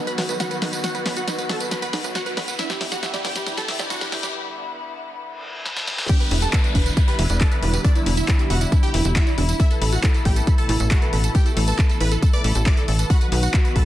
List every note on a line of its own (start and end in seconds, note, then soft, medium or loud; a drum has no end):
0.00 2.55 D#3 medium
0.00 2.55 F#3 medium
0.00 2.55 B3 medium
0.00 2.55 F#4 medium
0.00 riser medium
0.07 0.15 B4 medium
0.07 0.15 B5 loud
0.07 closed hi-hat soft
0.07 tambourine soft
0.18 0.26 B1 loud
0.18 0.24 F#4 medium
0.18 0.26 B4 medium
0.18 snare medium
0.18 open hi-hat loud
0.29 0.45 B1 medium
0.29 0.33 B4 medium
0.29 0.37 B4 medium
0.29 closed hi-hat soft
0.29 tambourine medium
0.40 0.48 F#4 medium
0.40 0.48 F#5 medium
0.40 0.44 B5 loud
0.40 snare medium
0.40 closed hi-hat medium
0.40 tambourine medium
0.51 0.59 B4 medium
0.51 0.57 F#5 medium
0.51 closed hi-hat soft
0.51 tambourine soft
0.62 0.78 B1 medium
0.62 0.68 D#4 medium
0.62 0.70 B4 medium
0.62 snare medium
0.62 open hi-hat medium
0.73 0.80 B4 medium
0.73 closed hi-hat soft
0.73 tambourine medium
0.84 0.91 F#4 medium
0.84 0.90 F#4 medium
0.84 0.91 F#5 loud
0.84 snare medium
0.84 closed hi-hat medium
0.84 tambourine medium
0.95 1.02 B4 medium
0.95 0.98 B4 medium
0.95 closed hi-hat soft
0.95 tambourine soft
1.06 1.22 B1 loud
1.06 1.13 B4 medium
1.06 1.09 B5 loud
1.06 snare medium
1.06 open hi-hat loud
1.17 1.24 F#4 medium
1.17 1.24 F#5 medium
1.17 1.23 F#5 medium
1.17 closed hi-hat soft
1.17 tambourine medium
1.28 1.34 D#4 medium
1.28 1.35 B4 medium
1.28 snare medium
1.28 closed hi-hat medium
1.28 tambourine medium
1.39 1.46 B4 medium
1.39 closed hi-hat soft
1.39 tambourine soft
1.49 1.66 B1 medium
1.49 1.56 F#4 medium
1.49 1.57 A4 medium
1.49 1.57 A5 loud
1.49 snare medium
1.49 open hi-hat medium
1.60 1.68 B4 medium
1.60 1.64 B4 medium
1.60 closed hi-hat soft
1.60 tambourine medium
1.71 1.79 B4 medium
1.71 1.75 B5 loud
1.71 snare medium
1.71 closed hi-hat medium
1.71 tambourine medium
1.82 1.90 B4 medium
1.82 1.88 F#5 medium
1.82 1.90 B5 medium
1.82 closed hi-hat soft
1.82 tambourine soft
1.93 2.01 B1 loud
1.93 1.99 D#4 medium
1.93 2.01 B4 medium
1.93 snare medium
1.93 open hi-hat loud
2.04 2.21 B1 loud
2.04 2.12 B4 medium
2.04 closed hi-hat soft
2.04 tambourine medium
2.15 2.21 F#4 medium
2.15 2.23 F#4 medium
2.15 2.23 F#5 loud
2.15 snare medium
2.15 closed hi-hat medium
2.15 tambourine medium
2.26 2.30 B4 medium
2.26 2.34 B4 medium
2.26 closed hi-hat soft
2.26 tambourine soft
2.37 2.54 B1 medium
2.37 2.45 B4 medium
2.37 2.41 B5 loud
2.37 snare medium
2.37 open hi-hat medium
2.48 2.56 B4 medium
2.48 2.54 F#5 medium
2.48 closed hi-hat soft
2.48 tambourine medium
2.59 6.06 D3 medium
2.59 6.06 G3 medium
2.59 6.06 B3 medium
2.59 2.65 D4 medium
2.59 6.06 E4 medium
2.59 2.67 E4 medium
2.59 2.67 E5 loud
2.59 snare medium
2.59 closed hi-hat medium
2.59 tambourine medium
2.70 2.78 G4 medium
2.70 snare medium
2.70 closed hi-hat soft
2.70 tambourine soft
2.81 2.97 G1 loud
2.81 2.87 E4 medium
2.81 2.89 G4 medium
2.81 snare medium
2.81 open hi-hat loud
2.92 3.00 F#4 medium
2.92 2.95 G4 medium
2.92 3.00 F#5 loud
2.92 snare medium
2.92 closed hi-hat soft
2.92 tambourine medium
3.03 3.10 G4 medium
3.03 3.06 E5 loud
3.03 snare medium
3.03 closed hi-hat medium
3.03 tambourine medium
3.14 3.21 G4 medium
3.14 3.20 D5 medium
3.14 snare medium
3.14 closed hi-hat soft
3.14 tambourine soft
3.25 3.41 G1 medium
3.25 3.31 D4 medium
3.25 3.32 G4 medium
3.25 3.32 G5 loud
3.25 snare loud
3.25 open hi-hat medium
3.36 3.43 G4 medium
3.36 snare medium
3.36 closed hi-hat soft
3.36 tambourine medium
3.47 3.53 E4 medium
3.47 3.54 G4 medium
3.47 snare loud
3.47 closed hi-hat medium
3.47 tambourine medium
3.57 3.61 G4 medium
3.57 3.65 A4 medium
3.57 3.65 A5 loud
3.57 snare medium
3.57 closed hi-hat soft
3.57 tambourine soft
3.68 3.77 G1 loud
3.68 3.76 G4 medium
3.68 3.72 E5 loud
3.68 snare loud
3.68 open hi-hat loud
3.79 3.96 G1 loud
3.79 3.87 G4 medium
3.79 3.86 D5 medium
3.79 snare medium
3.79 tambourine medium
3.90 3.96 D4 medium
3.90 3.98 F#4 medium
3.90 3.98 F#5 loud
3.90 snare loud
3.90 closed hi-hat medium
3.90 tambourine medium
4.01 4.09 G4 medium
4.01 snare medium
4.01 closed hi-hat soft
4.01 tambourine soft
4.12 4.29 G1 medium
4.12 4.18 E4 medium
4.12 4.20 G4 medium
4.12 snare loud
4.12 open hi-hat medium
4.23 4.31 G4 medium
4.23 4.27 G4 medium
4.23 snare medium
4.23 closed hi-hat soft
4.23 tambourine medium
5.22 reverse cymbal medium
5.66 snare medium
5.77 snare medium
5.87 snare medium
5.98 snare medium
6.09 9.56 D3 medium
6.09 9.56 G3 medium
6.09 9.56 B3 medium
6.09 6.15 D4 medium
6.09 13.06 E4 medium
6.09 6.17 G4 medium
6.09 6.17 G5 loud
6.09 kick loud
6.09 closed hi-hat medium
6.09 tambourine medium
6.09 crash loud
6.09 downlifter medium
6.20 6.28 B4 medium
6.20 closed hi-hat soft
6.20 tambourine soft
6.31 6.48 E1 loud
6.31 6.37 E4 medium
6.31 6.39 B4 medium
6.31 open hi-hat loud
6.42 6.46 G4 medium
6.42 6.50 A4 medium
6.42 6.50 A5 loud
6.42 closed hi-hat soft
6.42 tambourine medium
6.53 6.61 B4 medium
6.53 6.57 E5 loud
6.53 kick loud
6.53 clap loud
6.53 closed hi-hat medium
6.53 tambourine medium
6.64 6.72 B4 medium
6.64 6.70 D5 medium
6.64 closed hi-hat soft
6.64 tambourine soft
6.75 6.91 E1 medium
6.75 6.81 D4 medium
6.75 6.83 B4 medium
6.75 6.83 B5 loud
6.75 kick medium
6.75 open hi-hat medium
6.86 6.94 B4 medium
6.86 closed hi-hat soft
6.86 tambourine medium
6.97 7.03 E4 medium
6.97 7.05 B4 medium
6.97 kick loud
6.97 closed hi-hat medium
6.97 tambourine medium
7.08 7.12 G4 medium
7.08 7.16 B4 medium
7.08 7.16 B5 loud
7.08 closed hi-hat soft
7.08 tambourine soft
7.19 7.27 E1 loud
7.19 7.26 B4 medium
7.19 7.22 E5 loud
7.19 open hi-hat loud
7.30 7.46 E1 loud
7.30 7.37 B4 medium
7.30 7.36 D5 medium
7.30 closed hi-hat soft
7.30 tambourine medium
7.41 7.47 D4 medium
7.41 7.48 A4 medium
7.41 7.48 A5 loud
7.41 kick loud
7.41 clap loud
7.41 closed hi-hat medium
7.41 tambourine medium
7.52 7.59 B4 medium
7.52 closed hi-hat soft
7.52 tambourine soft
7.63 7.79 E1 medium
7.63 7.69 E4 medium
7.63 7.70 B4 medium
7.63 open hi-hat loud
7.73 7.77 G4 medium
7.73 7.81 B4 medium
7.73 closed hi-hat soft
7.73 tambourine medium
7.84 7.92 D4 medium
7.84 7.92 D5 loud
7.84 7.88 E5 loud
7.84 kick loud
7.84 closed hi-hat medium
7.84 tambourine soft
7.95 8.03 E4 medium
7.95 8.02 D5 medium
7.95 closed hi-hat soft
7.95 tambourine soft
8.06 8.23 E1 loud
8.06 8.13 D4 medium
8.06 8.14 E4 medium
8.06 open hi-hat loud
8.17 8.25 E4 medium
8.17 8.25 E5 loud
8.17 closed hi-hat soft
8.17 tambourine medium
8.28 8.36 E4 medium
8.28 8.34 E4 medium
8.28 kick loud
8.28 clap loud
8.28 closed hi-hat medium
8.28 tambourine soft
8.39 8.47 E4 medium
8.39 8.43 G4 medium
8.39 closed hi-hat soft
8.39 tambourine soft
8.50 8.67 E1 medium
8.50 8.58 F#4 medium
8.50 8.54 E5 loud
8.50 8.58 F#5 loud
8.50 open hi-hat loud
8.61 8.69 E4 medium
8.61 8.67 D5 medium
8.61 closed hi-hat soft
8.61 tambourine medium
8.72 8.78 D4 medium
8.72 8.80 E4 medium
8.72 kick loud
8.72 closed hi-hat medium
8.72 tambourine medium
8.83 8.91 G4 medium
8.83 8.91 G5 loud
8.83 closed hi-hat soft
8.83 tambourine soft
8.94 9.02 E1 loud
8.94 9.02 E4 medium
8.94 9.00 E4 medium
8.94 open hi-hat loud
9.05 9.21 E1 loud
9.05 9.13 E4 medium
9.05 9.09 G4 medium
9.05 closed hi-hat soft
9.05 tambourine medium
9.16 9.24 E4 medium
9.16 9.24 E5 loud
9.16 9.20 E5 loud
9.16 kick loud
9.16 clap loud
9.16 closed hi-hat medium
9.16 tambourine medium
9.27 9.35 E4 medium
9.27 9.33 D5 medium
9.27 closed hi-hat soft
9.27 tambourine soft
9.38 9.54 E1 medium
9.38 9.44 D4 medium
9.38 9.45 E4 medium
9.38 open hi-hat loud
9.49 9.56 E4 medium
9.49 closed hi-hat soft
9.49 tambourine medium
9.60 13.07 B2 medium
9.60 13.07 E3 medium
9.60 13.07 A3 medium
9.60 9.67 E4 medium
9.60 9.66 A4 medium
9.60 9.67 E5 loud
9.60 kick loud
9.60 closed hi-hat medium
9.60 tambourine medium
9.71 9.78 A4 medium
9.71 9.74 B4 medium
9.71 closed hi-hat soft
9.71 tambourine soft
9.81 9.98 A1 loud
9.81 9.89 A4 medium
9.81 9.85 B5 loud
9.81 open hi-hat loud
9.92 10.00 F#4 medium
9.92 10.00 F#5 medium
9.92 9.99 A5 medium
9.92 closed hi-hat soft
9.92 tambourine medium
10.03 10.10 E4 medium
10.03 10.11 A4 medium
10.03 kick loud
10.03 clap loud
10.03 closed hi-hat medium
10.03 tambourine medium
10.14 10.22 A4 medium
10.14 closed hi-hat soft
10.14 tambourine soft
10.25 10.42 A1 medium
10.25 10.33 G4 medium
10.25 10.31 A4 medium
10.25 10.33 G5 loud
10.25 kick medium
10.25 open hi-hat loud
10.36 10.44 A4 medium
10.36 10.40 B4 medium
10.36 closed hi-hat soft
10.36 tambourine medium
10.47 10.55 A4 medium
10.47 10.51 B5 loud
10.47 kick loud
10.47 closed hi-hat medium
10.47 tambourine medium
10.58 10.66 A4 medium
10.58 10.64 A5 medium
10.58 10.66 A5 loud
10.58 closed hi-hat soft
10.58 tambourine soft
10.69 10.77 A1 loud
10.69 10.75 E4 medium
10.69 10.77 A4 medium
10.69 open hi-hat loud
10.80 10.97 A1 loud
10.80 10.88 A4 medium
10.80 closed hi-hat soft
10.80 tambourine medium
10.91 10.99 F#4 medium
10.91 10.97 A4 medium
10.91 10.99 F#5 loud
10.91 kick loud
10.91 clap loud
10.91 closed hi-hat medium
10.91 tambourine medium
11.02 11.10 A4 medium
11.02 11.06 B4 medium
11.02 closed hi-hat soft
11.02 tambourine soft
11.13 11.29 A1 medium
11.13 11.21 A4 medium
11.13 11.17 B5 loud
11.13 open hi-hat loud
11.24 11.32 A4 medium
11.24 11.30 A5 medium
11.24 closed hi-hat soft
11.24 tambourine medium
11.35 11.41 E4 medium
11.35 11.43 G4 medium
11.35 11.43 G5 loud
11.35 kick loud
11.35 closed hi-hat medium
11.35 tambourine medium
11.46 11.54 A4 medium
11.46 closed hi-hat soft
11.46 tambourine soft
11.57 11.73 A1 loud
11.57 11.63 A4 medium
11.57 11.64 A4 medium
11.57 open hi-hat loud
11.68 11.75 A4 medium
11.68 11.71 B4 medium
11.68 11.75 A5 loud
11.68 closed hi-hat soft
11.68 tambourine medium
11.79 11.82 B5 loud
11.79 kick loud
11.79 clap loud
11.79 closed hi-hat medium
11.79 tambourine medium
11.89 11.97 A4 medium
11.89 11.96 A5 medium
11.89 closed hi-hat soft
11.89 tambourine soft
12.01 12.17 A1 medium
12.01 12.07 E4 medium
12.01 12.08 B4 medium
12.01 12.08 B5 loud
12.01 open hi-hat loud
12.12 12.19 A4 medium
12.12 closed hi-hat soft
12.12 tambourine medium
12.22 12.29 A4 medium
12.22 12.30 A4 medium
12.22 kick loud
12.22 closed hi-hat medium
12.22 tambourine medium
12.33 12.37 B4 medium
12.33 12.41 D5 medium
12.33 12.41 D6 loud
12.33 closed hi-hat soft
12.33 tambourine soft
12.44 12.53 A1 loud
12.44 12.52 A4 medium
12.44 12.48 B5 loud
12.44 open hi-hat loud
12.55 12.72 A1 loud
12.55 12.63 A4 medium
12.55 12.61 A5 medium
12.55 closed hi-hat soft
12.55 tambourine medium
12.66 12.72 E4 medium
12.66 12.74 D5 medium
12.66 12.74 D6 loud
12.66 kick loud
12.66 clap loud
12.66 closed hi-hat medium
12.66 tambourine medium
12.77 12.85 A4 medium
12.77 closed hi-hat soft
12.77 tambourine soft
12.88 13.05 A1 medium
12.88 12.94 A4 medium
12.88 12.96 A4 medium
12.88 open hi-hat loud
12.99 13.07 A4 medium
12.99 13.03 B4 medium
12.99 closed hi-hat soft
12.99 tambourine medium
13.10 13.85 D#3 medium
13.10 13.85 F#3 medium
13.10 13.85 B3 medium
13.10 13.85 F#4 medium
13.10 13.18 F#4 medium
13.10 13.18 F#5 loud
13.10 13.14 B5 loud
13.10 kick loud
13.10 closed hi-hat medium
13.10 tambourine medium
13.21 13.29 B4 medium
13.21 13.27 F#5 medium
13.21 closed hi-hat soft
13.21 tambourine soft
13.32 13.48 B1 loud
13.32 13.38 D#4 medium
13.32 13.40 B4 medium
13.32 open hi-hat loud
13.43 13.51 F#4 medium
13.43 13.51 F#5 loud
13.43 closed hi-hat soft
13.43 tambourine medium
13.54 13.60 F#4 medium
13.54 13.62 B4 medium
13.54 kick loud
13.54 clap loud
13.54 closed hi-hat medium
13.54 tambourine medium
13.65 13.68 B4 medium
13.65 13.73 B4 medium
13.65 closed hi-hat soft
13.65 tambourine soft
13.76 13.85 B1 medium
13.76 13.84 A4 medium
13.76 13.83 A5 loud
13.76 13.79 B5 loud
13.76 kick medium
13.76 open hi-hat medium